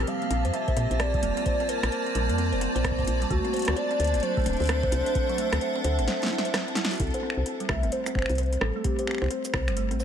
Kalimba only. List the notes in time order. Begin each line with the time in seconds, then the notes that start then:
0.07 G3
0.22 A#3
0.31 C4
0.45 C5
0.54 C4
0.68 C5
0.77 C4
0.91 C5
1.00 C4
1.14 G3
1.23 A#3
1.37 C4
1.46 C5
1.60 C4
1.69 C5
1.83 C4
1.92 C5
2.06 C4
2.15 G3
2.29 A#3
2.38 C4
2.52 C5
2.61 C4
2.76 C5
2.84 C4
2.99 C5
3.07 C4
3.22 G3
3.30 A3
3.45 C4
3.53 C5
3.68 C4
3.76 C5
3.91 C4
4.00 C5
4.14 C4
4.23 F#3
4.37 A3
4.46 C4
4.60 C5
4.69 C4
4.83 C5
4.92 C4
5.06 C5
5.15 C4
5.29 F#3
5.38 A3
5.53 C4
5.61 C5
5.76 C4
5.84 C5
5.99 C4
6.08 C5
6.22 C4
6.31 E4
6.45 C5
6.54 C4
6.68 C4
6.77 E4
6.91 F#4
7.00 C4
7.14 C5
7.23 C4
7.37 C5
7.46 C4
7.60 G3
7.69 A3
7.83 C4
7.92 C5
8.06 C4
8.15 C5
8.30 C4
8.38 C5
8.52 C4
8.61 G3
8.76 A3
8.84 C4
8.99 C5
9.07 C4
9.22 C5
9.30 C4
9.45 C5
9.53 C4
9.68 G3
9.77 A3
9.91 C4
10.00 C5